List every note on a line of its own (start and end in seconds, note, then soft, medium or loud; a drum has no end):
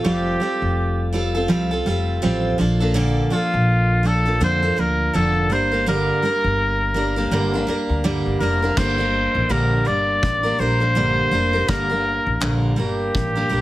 0.04 0.34 F1 medium
0.04 0.41 F3 medium
0.04 0.39 G3 medium
0.04 0.40 C4 medium
0.04 0.41 F4 medium
0.04 1.09 G4 medium
0.04 0.41 A4 medium
0.40 1.11 G3 soft
0.40 1.12 C4 medium
0.40 1.14 F4 medium
0.40 1.15 A4 medium
0.62 1.45 F1 medium
1.13 1.35 G3 medium
1.13 1.35 C4 medium
1.13 1.36 F4 medium
1.13 1.33 A4 medium
1.35 1.48 C4 soft
1.35 1.49 F4 soft
1.35 1.49 A4 medium
1.48 1.79 C2 medium
1.48 1.71 F3 medium
1.48 1.71 G3 medium
1.48 1.72 C4 medium
1.48 1.71 F4 medium
1.48 1.70 A4 medium
1.71 1.86 C4 soft
1.71 1.86 F4 medium
1.71 1.86 A4 medium
1.86 2.16 F1 medium
1.86 2.21 G3 medium
1.86 2.21 C4 medium
1.86 2.22 F4 medium
1.86 2.23 A4 medium
2.22 2.53 A1 medium
2.22 2.57 F3 medium
2.22 2.58 G3 medium
2.22 2.59 C4 medium
2.22 2.59 F4 medium
2.22 2.59 A4 medium
2.58 3.19 A#1 medium
2.58 2.80 F3 medium
2.58 2.81 A#3 medium
2.58 2.80 D4 medium
2.58 2.79 A4 medium
2.80 2.94 F3 soft
2.80 2.94 A#3 soft
2.80 2.94 D4 soft
2.80 2.95 A4 medium
2.94 3.31 A#2 medium
2.94 3.31 D3 medium
2.94 3.29 F3 medium
2.94 3.30 A#3 medium
2.94 3.31 D4 medium
2.94 3.32 A4 loud
3.30 4.02 F3 medium
3.30 4.04 A#3 medium
3.30 4.05 D4 medium
3.30 4.08 F4 medium
3.30 4.05 A4 medium
3.54 4.37 A#1 medium
4.03 4.26 F3 medium
4.03 4.26 A#3 medium
4.03 4.25 D4 medium
4.03 4.24 A4 medium
4.03 4.42 A4 medium
4.25 4.40 F3 soft
4.25 4.40 A#3 soft
4.25 4.41 D4 soft
4.25 4.40 A4 soft
4.40 4.71 F2 medium
4.40 4.62 A#2 medium
4.40 4.63 D3 medium
4.40 4.63 F3 medium
4.40 4.63 A#3 medium
4.40 4.62 D4 medium
4.40 4.61 A4 medium
4.40 4.81 C5 loud
4.63 4.75 F3 soft
4.63 4.76 A#3 soft
4.63 4.77 D4 soft
4.63 4.77 A4 medium
4.77 5.07 D2 medium
4.77 5.13 F3 medium
4.77 5.13 A#3 medium
4.77 5.14 D4 medium
4.77 5.16 A#4 medium
5.14 5.50 F1 medium
5.14 5.50 A#2 medium
5.14 5.50 D3 medium
5.14 5.49 F3 medium
5.14 5.50 A#3 medium
5.14 5.51 D4 medium
5.14 5.54 A4 medium
5.14 5.51 A4 medium
5.50 6.10 G1 medium
5.50 5.72 G3 medium
5.50 5.72 A#3 medium
5.50 5.71 D4 medium
5.50 5.70 A#4 medium
5.50 5.88 C5 medium
5.72 5.86 G3 soft
5.72 5.86 A#3 soft
5.72 5.87 D4 soft
5.72 5.86 A#4 medium
5.86 6.23 G2 medium
5.86 6.23 D3 medium
5.86 6.21 G3 medium
5.86 6.22 A#3 medium
5.86 6.23 D4 medium
5.86 6.24 A#4 medium
5.86 8.02 A#4 medium
6.22 6.94 G3 medium
6.22 6.95 A#3 medium
6.22 6.96 D4 medium
6.22 6.96 A#4 medium
6.44 7.28 G1 medium
6.94 7.17 G3 medium
6.94 7.17 A#3 medium
6.94 7.16 D4 medium
6.94 7.15 A#4 medium
7.16 7.31 G3 soft
7.16 7.32 A#3 soft
7.16 7.32 D4 soft
7.16 7.31 A#4 medium
7.31 7.61 G1 medium
7.31 7.53 G2 medium
7.31 7.54 D3 medium
7.31 7.54 G3 medium
7.31 7.54 A#3 medium
7.31 7.54 D4 medium
7.31 7.52 A#4 medium
7.54 7.66 G3 soft
7.54 7.67 A#3 soft
7.54 7.67 D4 medium
7.54 7.68 A#4 soft
7.67 8.03 G3 medium
7.67 8.04 A#3 medium
7.67 8.04 D4 medium
7.67 8.05 A#4 medium
7.67 muted upright bass stroke soft
7.89 8.19 D2 medium
8.04 8.41 G2 medium
8.04 8.41 D3 medium
8.04 8.39 G3 medium
8.04 8.40 A#3 medium
8.04 8.42 D4 medium
8.04 8.42 A#4 medium
8.26 8.38 G1 medium
8.40 8.71 F1 medium
8.40 8.63 G3 medium
8.40 8.63 A#3 medium
8.40 8.62 D4 medium
8.40 8.79 A#4 medium
8.40 8.61 A#4 medium
8.62 8.77 G3 soft
8.62 8.78 A#3 soft
8.62 8.78 D4 medium
8.62 8.77 A#4 soft
8.77 9.25 G1 medium
8.77 8.99 G2 medium
8.77 9.00 D3 medium
8.77 9.00 G3 medium
8.77 8.99 A#3 medium
8.77 8.98 D4 medium
8.77 8.97 A#4 medium
8.77 9.53 C5 loud
8.77 kick loud
8.77 crash medium
8.98 9.49 G3 soft
8.98 9.49 A#3 soft
8.98 9.50 D4 soft
8.98 9.50 A#4 soft
9.35 9.47 A1 medium
9.49 9.80 A#1 medium
9.49 9.86 G2 medium
9.49 9.86 D3 medium
9.49 9.84 G3 medium
9.49 9.84 A#3 medium
9.49 9.85 D4 medium
9.49 9.86 A#4 medium
9.49 9.89 A#4 medium
9.85 10.17 G1 medium
9.85 10.44 G3 medium
9.85 10.44 A#3 medium
9.85 10.44 D4 medium
9.85 10.42 A#4 medium
9.85 10.61 D5 loud
10.23 10.53 A1 medium
10.23 kick medium
10.43 10.57 G3 soft
10.43 10.59 A#3 soft
10.43 10.59 D4 soft
10.43 10.59 A#4 medium
10.59 11.19 A#1 medium
10.59 10.81 G3 medium
10.59 10.81 A#3 medium
10.59 10.80 D4 medium
10.59 10.79 A#4 medium
10.59 11.70 C5 loud
10.80 10.95 G3 soft
10.80 10.96 A#3 soft
10.80 10.96 D4 soft
10.80 10.95 A#4 soft
10.95 11.32 G2 medium
10.95 11.32 D3 medium
10.95 11.30 G3 medium
10.95 11.31 A#3 medium
10.95 11.32 D4 medium
10.95 11.33 A#4 medium
11.31 11.62 F1 medium
11.31 11.54 G3 medium
11.31 11.54 A#3 medium
11.31 11.53 D4 medium
11.31 11.52 A#4 medium
11.53 11.67 G3 soft
11.53 11.68 A#3 soft
11.53 11.68 D4 soft
11.53 11.68 A#4 medium
11.68 12.16 G1 medium
11.68 11.90 G2 medium
11.68 11.90 D3 medium
11.68 11.90 G3 medium
11.68 11.90 A#3 medium
11.68 11.89 D4 medium
11.68 12.53 A#4 loud
11.68 11.88 A#4 medium
11.68 kick loud
11.89 12.40 G3 soft
11.89 12.40 A#3 soft
11.89 12.41 D4 soft
11.89 12.41 A#4 soft
12.26 12.39 A1 medium
12.40 12.71 A#1 medium
12.40 12.77 G2 medium
12.40 12.78 D3 medium
12.40 12.75 G3 medium
12.40 12.76 A#3 medium
12.40 12.77 D4 medium
12.40 12.78 A#4 medium
12.40 clap loud
12.76 13.08 G1 medium
12.76 13.35 G3 medium
12.76 13.36 A#3 medium
12.76 13.35 D4 medium
12.76 13.34 A#4 medium
12.81 13.61 G4 medium
13.14 13.44 A1 medium
13.14 kick loud
13.35 13.48 G3 soft
13.35 13.49 A#3 soft
13.35 13.50 D4 soft
13.35 13.50 A#4 soft
13.49 13.61 A#1 medium
13.49 13.61 G3 medium
13.49 13.61 A#3 medium
13.49 13.61 D4 medium
13.49 13.61 A#4 medium